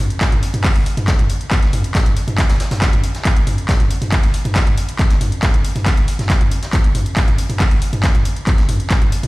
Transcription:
0.10 closed hi-hat
0.21 kick, snare, clap, closed hi-hat
0.32 closed hi-hat, mid tom
0.43 closed hi-hat, open hi-hat
0.54 closed hi-hat, mid tom
0.64 kick, clap, closed hi-hat, open hi-hat
0.76 closed hi-hat
0.86 closed hi-hat, open hi-hat
0.97 closed hi-hat, mid tom
1.08 kick, snare, clap, closed hi-hat
1.19 closed hi-hat, mid tom
1.29 closed hi-hat, open hi-hat
1.41 closed hi-hat
1.51 kick, clap, closed hi-hat
1.63 snare, closed hi-hat
1.73 closed hi-hat, mid tom, open hi-hat
1.84 closed hi-hat
1.95 kick, snare, clap, closed hi-hat
2.06 closed hi-hat, mid tom
2.17 closed hi-hat, open hi-hat
2.27 closed hi-hat, mid tom
2.38 kick, snare, clap, closed hi-hat
2.49 snare, closed hi-hat
2.60 snare, closed hi-hat, open hi-hat
2.71 snare, closed hi-hat, mid tom
2.82 kick, snare, clap, closed hi-hat
2.93 closed hi-hat, mid tom
3.03 closed hi-hat, open hi-hat
3.15 snare, closed hi-hat
3.25 kick, clap, closed hi-hat
3.36 closed hi-hat
3.47 closed hi-hat, mid tom, open hi-hat
3.58 closed hi-hat
3.69 kick, snare, clap, closed hi-hat
3.80 closed hi-hat, mid tom
3.90 closed hi-hat, open hi-hat
4.02 closed hi-hat, mid tom
4.12 kick, clap, closed hi-hat, open hi-hat
4.23 closed hi-hat
4.34 closed hi-hat, open hi-hat
4.45 closed hi-hat, mid tom
4.55 kick, snare, clap, closed hi-hat
4.67 closed hi-hat, mid tom
4.77 closed hi-hat, open hi-hat
4.89 closed hi-hat
4.99 kick, clap, closed hi-hat
5.10 snare, closed hi-hat
5.20 closed hi-hat, mid tom, open hi-hat
5.32 closed hi-hat
5.42 kick, snare, clap, closed hi-hat
5.54 closed hi-hat, mid tom
5.65 closed hi-hat, open hi-hat
5.75 closed hi-hat, mid tom
5.86 kick, clap, closed hi-hat
5.97 closed hi-hat
6.08 closed hi-hat, open hi-hat
6.19 snare, closed hi-hat, mid tom
6.30 kick, snare, clap, closed hi-hat
6.41 closed hi-hat, mid tom
6.51 closed hi-hat, open hi-hat
6.62 snare, closed hi-hat
6.73 kick, clap, closed hi-hat
6.84 closed hi-hat
6.95 closed hi-hat, mid tom, open hi-hat
7.06 closed hi-hat
7.16 kick, snare, clap, closed hi-hat
7.28 closed hi-hat, mid tom
7.38 closed hi-hat, open hi-hat
7.50 closed hi-hat, mid tom
7.60 kick, clap, closed hi-hat, open hi-hat
7.71 closed hi-hat
7.82 closed hi-hat, open hi-hat
7.93 closed hi-hat, mid tom
8.03 kick, snare, clap, closed hi-hat
8.15 closed hi-hat, mid tom
8.25 closed hi-hat, open hi-hat
8.36 closed hi-hat
8.47 kick, clap, closed hi-hat
8.58 snare, closed hi-hat
8.68 closed hi-hat, mid tom, open hi-hat
8.80 closed hi-hat
8.90 kick, snare, clap, closed hi-hat
9.02 closed hi-hat, mid tom
9.12 closed hi-hat, open hi-hat
9.23 closed hi-hat, mid tom

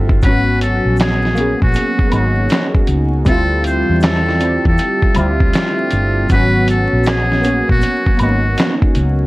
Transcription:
Already playing: G1 D3 G3 A3 C4 D4 E4 F#4 A4 E5
0.09 kick
0.22 G#1 F#3 B3 B4, kick, closed hi-hat, shaker
0.26 C#4 F#4
0.61 A4, closed hi-hat, shaker
0.85 A#1
0.97 G#4, closed hi-hat, shaker
1.01 snare, clap
1.25 snare
1.35 A#3 B3 C#4, closed hi-hat, shaker
1.41 G#4
1.62 A#1 F#4, kick
1.74 closed hi-hat, shaker
1.99 muted fingered electric bass stroke, kick
2.07 A#3 B3
2.11 G#1 C#4 D#4 F#4, closed hi-hat, high woodblock, shaker
2.49 snare, clap, closed hi-hat, shaker
2.75 kick
2.87 C#2, closed hi-hat, shaker
3.25 D2 D3 G3 A3 C4 D4 G4 A4 E5, kick, closed hi-hat, shaker
3.29 E4 F4
3.64 C5, closed hi-hat, shaker
3.89 E2
4.01 A4, snare, clap, closed hi-hat, shaker
4.28 snare
4.40 G3 C4 E4, closed hi-hat, shaker
4.45 G4
4.65 E2 A4, kick
4.78 closed hi-hat, shaker
5.03 muted fingered electric bass stroke, kick
5.14 D2 G3 C4 E5, closed hi-hat, high woodblock, shaker
5.19 F4 G4
5.40 kick
5.53 snare, clap, closed hi-hat, shaker
5.90 G1, closed hi-hat, shaker
6.29 G#1 F#3 B3 C#4 F#4 B4, kick, closed hi-hat, shaker
6.34 C#4 F#4
6.68 A4, closed hi-hat, shaker
6.93 A#1
7.04 snare, closed hi-hat, shaker
7.08 G#4, clap
7.32 snare
7.41 A#3 B3 C#4, closed hi-hat, shaker
7.47 F#4
7.69 A#1 F#4, kick
7.81 closed hi-hat, shaker
8.06 muted fingered electric bass stroke, kick
8.17 G#1 A#3 B3, closed hi-hat, high woodblock, shaker
8.21 C#4 D#4 F#4
8.57 snare, clap, closed hi-hat, shaker
8.82 kick
8.95 C#2, closed hi-hat, shaker

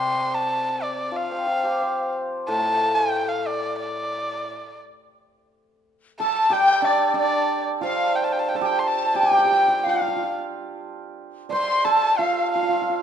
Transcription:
Already playing: C3 G3 C6
0.34 A5
0.83 D5
1.12 F3
1.17 F5
1.32 C4
1.47 F4
1.63 G4
1.82 C5
2.48 A2 A5
2.95 G5
3.29 F5
3.47 D5
3.80 D5
6.20 A4 A5
6.50 G3 G4 G5
6.82 D4 D5
7.14 D4
7.18 D5
7.81 F3 F4 F5
8.16 G5
8.24 A5
8.32 G5
8.39 A5
8.49 G5
8.55 A4 A5
8.61 G4 G5
8.66 G5
8.79 A5 C6
8.88 A5
9.14 G3 G4 G5
9.20 G4 G5
9.31 G4
9.39 G4
9.45 G4
9.52 G4
9.68 G4
9.84 F4 F5
9.89 F5
9.93 F4
10.01 F4
10.08 F4
10.16 F4
10.23 F4
11.49 C5 D5 C6
11.54 C6
11.84 A4 A5
12.18 F4 F5
12.52 F4 F5
12.62 F4
12.69 F4
12.74 F4
12.82 F4
12.90 F4

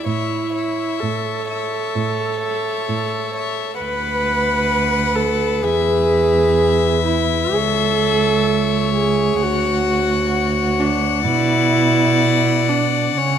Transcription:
0.06 A2 E4 C#5 E5
0.55 C#5 E5
1.01 A2 A4
1.49 C#5 E5
1.96 A2
2.41 C#5 E5
2.89 A2
3.34 C#5 E5
3.79 D2 B4 F#5
5.16 A4
5.62 E2 G#4 E5
7.05 E4
7.55 C#2 A4 C#5
8.95 G#4
9.41 D2 F#4 F#5
10.79 D4
11.26 B2 E4 D5
12.69 D4
13.17 C#3 C#4 C#5

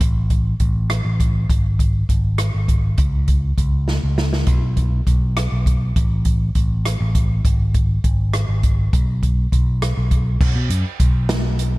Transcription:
0.00 A1, kick, closed hi-hat
0.30 kick, closed hi-hat
0.60 A1, kick, closed hi-hat
0.90 cross-stick, closed hi-hat
1.05 A1
1.20 kick, closed hi-hat
1.49 G#1, kick, closed hi-hat
1.79 kick, closed hi-hat
2.09 G#1, kick, closed hi-hat
2.38 cross-stick, closed hi-hat
2.55 G#1
2.68 kick, closed hi-hat
2.98 C#2, kick, closed hi-hat
3.28 kick, closed hi-hat
3.58 C#2, kick, closed hi-hat
3.88 snare
4.03 C#2
4.18 snare
4.33 snare
4.47 B1, kick, closed hi-hat
4.77 kick, closed hi-hat
5.07 B1, kick, closed hi-hat
5.37 cross-stick, closed hi-hat
5.52 B1
5.66 kick, closed hi-hat
5.96 A1, kick, closed hi-hat
6.25 kick, closed hi-hat
6.55 A1, kick, closed hi-hat
6.85 cross-stick, closed hi-hat
7.01 A1
7.15 kick, closed hi-hat
7.45 G#1, kick, closed hi-hat
7.74 kick, closed hi-hat
8.04 G#1, kick, closed hi-hat
8.34 cross-stick, closed hi-hat
8.49 G#1
8.63 kick, closed hi-hat
8.93 B1, kick, closed hi-hat
9.23 kick, closed hi-hat
9.52 B1, kick, closed hi-hat
9.82 cross-stick, closed hi-hat
9.97 B1
10.11 kick, closed hi-hat
10.41 B1, kick, crash
10.55 B2
10.69 F#2, closed hi-hat
11.00 B1, kick, closed hi-hat
11.29 snare, closed hi-hat
11.59 closed hi-hat

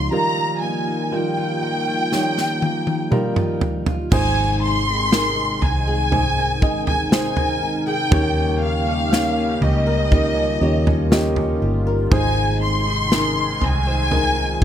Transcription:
Already playing: F3 G#3 C#4 D#4 F4 C#5 D#5 C6
0.11 D#3 G3 A#3 D#4 F4 A#4 A#5
0.37 D#4
0.62 A#3 G#5
0.87 D#4
1.11 G3 A#3 D#4 F4 A#4 G5
1.37 F4
1.62 D#4
1.87 F4
2.12 D#3 G3 D#4 F4 C#5, snare
2.37 D#4, snare
2.62 A#3, high tom
2.87 D#4, high tom
3.11 G3 A#3 D#4 F4 A#4, mid tom
3.36 F4, mid tom
3.61 D#4, floor tom
3.86 F4, floor tom
4.11 G#1 G#2 C3 D#3 G#3 D#4 G#4 C5 G#5, kick, floor tom, crash
4.37 C4
4.62 D#4 C6
4.87 C4
5.11 D#4 G#4 A#4, snare
5.37 C4
5.62 C2 D#4 G#5, floor tom
5.87 G#4
6.11 G#2 D#4 G#4 A#4 C5, floor tom
6.37 C4
6.61 G#1 D#4 G#4 D#5, kick
6.87 C4 G#5, floor tom
7.12 D#4 G#4 C5 G#5, snare
7.37 C4, floor tom
7.62 D#4
7.87 G#4 G5
8.11 D#2 C#3 D#3 G3 A#3 C#4 D#4 G4 C#5, kick, floor tom
8.37 C#4
8.62 G4 F5
8.87 C#4
9.12 A#3 C#4 D#4 G4 C#5, snare
9.37 C#4
9.61 C#2 G4 D#5, floor tom
9.87 A#4
10.11 D#3 A#3 C#4 D#4 F4 G4 A#4, kick, floor tom
10.36 C#4
10.61 D#2 A#3 C#4 D#4 G4 C#5
10.86 C#4, floor tom
11.11 A#3 C#4 D#4 G4 D#5, snare
11.36 C#4, floor tom
11.62 G1 G4
11.87 A#4
12.11 G#1 G#2 C3 D#3 G#3 D#4 G#4 C5 G#5, kick, floor tom
12.37 D#4
12.62 C4 C6
12.87 D#4
13.11 C4 D#4 G#4 A#4, snare
13.37 D#4
13.61 C2 C4 G#5, floor tom
13.87 C5
14.11 G#3 D#4 F4 G#4 A#4, floor tom
14.37 D#4

